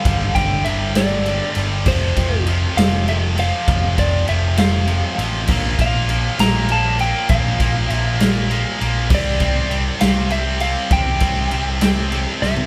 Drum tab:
CC |------------|x-----------|------------|x-----------|
RD |x-x-x-x-x-x-|--x-x-x-x-x-|x-x-x-x-x-x-|--x-x-x-x-x-|
SD |------o-----|------o-----|------o-----|------o-----|
FT |------------|------------|------------|------------|
BD |o-o---------|o-o---------|o-o---------|o-o---------|

CC |------------|x-----------|------------|
RD |x-x-x-x-x-x-|--x-x-x-x-x-|x-x-x-x-x---|
SD |------o-----|------o-----|------o---o-|
FT |------------|------------|-----------o|
BD |o-o---------|o-o---------|o-o---------|